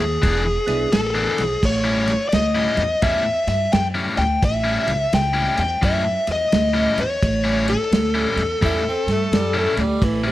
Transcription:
Already playing: D#2 G#4
0.22 E1 E3 B3 D4 G#4, kick, snare, ride
0.45 muted overdriven electric guitar stroke
0.66 B1 B3 D4 E4 G#4, snare, ride
0.92 A1 A4, snare, ride
1.15 E3 B3 D4 G#4
1.37 B1, snare, ride
1.43 G#4
1.63 A1 C#5, kick, snare, crash
1.84 A2 G3 C#4 E4
2.08 snare, ride
2.29 D2 D5, ride
2.33 D#5, snare
2.55 A2 G3 C#4 E4
2.77 E2, snare, ride
3.02 E2 A2 G3 C#4 E4 E5, kick, snare, ride
3.24 muted overdriven electric guitar stroke
3.47 G2 E5, snare, ride
3.73 F#2 G5, snare, ride
3.94 A2 G3 C#4 E4
4.17 D2 G5, snare, ride
4.43 A1 E5, kick, snare, ride
4.64 A2 G3 C#4 E4
4.88 C#2, snare, ride
5.13 C#2 G5, snare, ride
5.33 A2 G3 C#4 E4
5.57 E2 G5, snare, ride
5.82 F#2 A2 G3 C#4 E4 E5, kick, snare, ride
6.04 muted overdriven electric guitar stroke
6.27 E2, snare, ride
6.32 D#5
6.52 D2, snare, ride
6.74 A2 G3 C#4 E4
6.97 E2, snare, ride
7.01 C#5
7.23 A1, kick, snare, ride
7.44 A2 G3 C#4 E4
7.68 A4, snare, ride
7.91 D2, snare, ride
8.14 A2 G3 C#4 E4
8.36 E2, snare, ride
8.61 E2 A2 G3 C#4 E4, kick, snare, ride
8.84 muted overdriven electric guitar stroke
8.88 C4
9.07 G2, snare, ride
9.11 A3
9.32 F#2 G3, snare, ride
9.54 A2 G3 A3 C#4 E4
9.77 D2 G3, snare, ride
10.02 A1 E3, kick, snare, ride
10.24 A2 C3 G3 C#4 E4

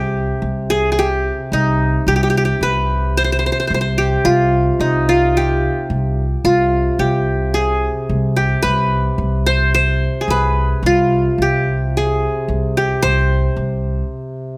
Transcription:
Already playing: C2 C3 G4
0.42 C2
0.70 G#4
0.92 G#4
0.99 G4
1.52 C2 D#4
2.07 C2 C3 G4
2.16 G4
2.23 G4
2.30 G4
2.37 G4
2.45 G4
2.61 C2 B4
3.17 C5
3.24 C5
3.32 C5
3.39 C5
3.46 C5
3.52 C5
3.60 C5
3.67 C2 C5
3.74 C5
3.81 C5
3.98 G4
4.25 C2 F4
4.79 C2 D#4
5.09 F4
5.37 G4
5.90 C2
6.44 C2 C3 F4
6.99 C2 G4
7.54 G#4
8.09 C2
8.36 G4
8.62 C2 B4
9.18 C2
9.46 C5
9.74 C5
10.21 G#4
10.28 C2 B4
10.83 C2 C3 F4
11.38 C2 G4
11.97 G#4
12.48 C2
12.77 G4
13.02 C2 C5
13.56 C2

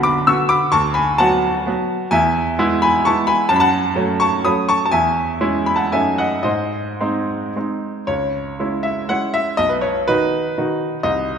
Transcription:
Already playing: B1 D3 B3 F#4 F#5 B5
0.03 B5 D6
0.27 D3 B3 F#4 C#6 E6
0.49 B5 D6
0.72 D2 A5 C#6
0.94 G#5 B5
1.18 F#3 B3 F#4 F#5 A5
1.66 F#3 B3 F#4
2.11 E2 E5 G#5
2.59 G#3 B3 E4
2.82 G#5 B5
3.05 G#3 B3 E4 A5 C#6
3.27 G#5 B5
3.49 F#2 A5
3.56 B5
3.60 F#5 A5
3.95 F#3 A3 C#4
4.20 A5 C#6
4.45 F#3 A3 C#4 B5 D#6
4.69 A5 C#6
4.86 A5
4.91 E2 E5 G#5
5.41 G#3 C#4 E4
5.66 B5
5.76 F#5 A5
5.92 F#2 A3 C#4 D#4 E5 G#5
6.18 D#5 F#5
6.43 G#2 C5 D#5
7.01 G#3 C4 D#4
7.56 G#3 C4 D#4
8.07 C#2 C#5
8.60 G#3 C#4 E4
8.83 E5
9.09 G#3 C#4 E4 F#5
9.34 E5
9.57 B1 D#5
9.69 B4
9.81 C#5
10.08 D#3 D#4 F#4 B4
10.58 D#3 D#4 F#4
11.03 C2 D#5

